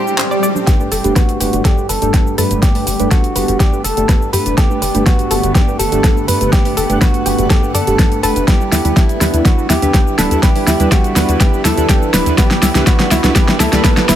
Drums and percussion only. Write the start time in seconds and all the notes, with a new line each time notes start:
0.07 cabasa
0.18 clap, high conga, cabasa
0.32 cabasa
0.43 cabasa
0.56 high conga, low conga, cabasa
0.67 kick, snare, closed hi-hat, cabasa
0.80 cabasa
0.92 open hi-hat, cabasa
1.04 closed hi-hat, cabasa
1.16 kick, snare, closed hi-hat, cabasa
1.29 closed hi-hat, cabasa
1.41 open hi-hat, cabasa
1.53 closed hi-hat, cabasa
1.65 kick, snare, closed hi-hat, cabasa
1.78 cabasa
1.89 open hi-hat, cabasa
2.02 closed hi-hat, cabasa
2.14 kick, snare, closed hi-hat, cabasa
2.27 cabasa
2.38 open hi-hat, cabasa
2.51 closed hi-hat, cabasa
2.63 kick, snare, closed hi-hat, cabasa
2.75 open hi-hat, cabasa
2.87 open hi-hat, cabasa
3.00 closed hi-hat, cabasa
3.11 kick, snare, closed hi-hat, cabasa
3.24 closed hi-hat, cabasa
3.36 open hi-hat, cabasa
3.48 closed hi-hat, cabasa
3.60 kick, snare, closed hi-hat, cabasa
3.73 cabasa
3.84 open hi-hat, cabasa
3.97 closed hi-hat, cabasa
4.09 kick, snare, closed hi-hat, cabasa
4.22 cabasa
4.33 open hi-hat, cabasa
4.46 closed hi-hat, cabasa
4.58 kick, snare, closed hi-hat, cabasa
4.71 cabasa
4.82 open hi-hat, cabasa
4.95 closed hi-hat, cabasa
5.06 kick, snare, closed hi-hat, cabasa
5.19 closed hi-hat, cabasa
5.31 open hi-hat, cabasa
5.43 closed hi-hat, cabasa
5.55 kick, snare, closed hi-hat, cabasa
5.68 cabasa
5.80 open hi-hat, cabasa
5.92 closed hi-hat, cabasa
6.04 kick, snare, closed hi-hat, cabasa
6.17 cabasa
6.28 open hi-hat, cabasa
6.41 closed hi-hat, cabasa
6.53 kick, snare, closed hi-hat, cabasa
6.65 open hi-hat, cabasa
6.77 open hi-hat, cabasa
6.90 closed hi-hat, cabasa
7.01 kick, snare, closed hi-hat, cabasa
7.14 closed hi-hat, cabasa
7.26 open hi-hat, cabasa
7.38 closed hi-hat, cabasa
7.50 kick, snare, closed hi-hat, cabasa
7.63 cabasa
7.75 open hi-hat, cabasa
7.87 closed hi-hat, cabasa
7.99 kick, snare, closed hi-hat, cabasa
8.12 closed hi-hat, cabasa
8.23 open hi-hat, cabasa
8.36 closed hi-hat, cabasa
8.48 kick, snare, closed hi-hat, cabasa
8.61 cabasa
8.72 snare, open hi-hat, cabasa
8.85 closed hi-hat, cabasa
8.97 kick, snare, closed hi-hat, cabasa
9.09 closed hi-hat, cabasa
9.21 snare, open hi-hat, cabasa
9.34 closed hi-hat, cabasa
9.45 kick, snare, closed hi-hat, cabasa
9.59 cabasa
9.70 snare, open hi-hat, cabasa
9.82 closed hi-hat, cabasa
9.94 kick, snare, closed hi-hat, cabasa
10.07 cabasa
10.19 snare, open hi-hat, cabasa
10.31 closed hi-hat, cabasa
10.43 kick, snare, closed hi-hat, cabasa
10.56 open hi-hat, cabasa
10.67 snare, open hi-hat, cabasa
10.80 closed hi-hat, cabasa
10.92 kick, snare, closed hi-hat, cabasa
11.04 closed hi-hat, cabasa
11.16 snare, open hi-hat, cabasa
11.29 closed hi-hat, cabasa
11.40 kick, snare, closed hi-hat, cabasa
11.54 cabasa
11.65 snare, open hi-hat, cabasa
11.78 closed hi-hat, cabasa
11.89 kick, snare, closed hi-hat, cabasa
12.02 cabasa
12.14 snare, open hi-hat, cabasa
12.26 closed hi-hat, cabasa
12.38 kick, snare, closed hi-hat, cabasa
12.51 snare, cabasa
12.62 snare, open hi-hat, cabasa
12.75 snare, closed hi-hat, cabasa
12.87 kick, snare, closed hi-hat, cabasa
12.99 snare, closed hi-hat, cabasa
13.11 snare, open hi-hat, cabasa
13.24 snare, closed hi-hat, cabasa
13.36 kick, snare, closed hi-hat, cabasa
13.48 snare, cabasa
13.60 snare, open hi-hat, cabasa
13.73 snare, closed hi-hat, cabasa
13.84 kick, snare, closed hi-hat, cabasa
13.97 snare, cabasa
14.09 snare, open hi-hat, cabasa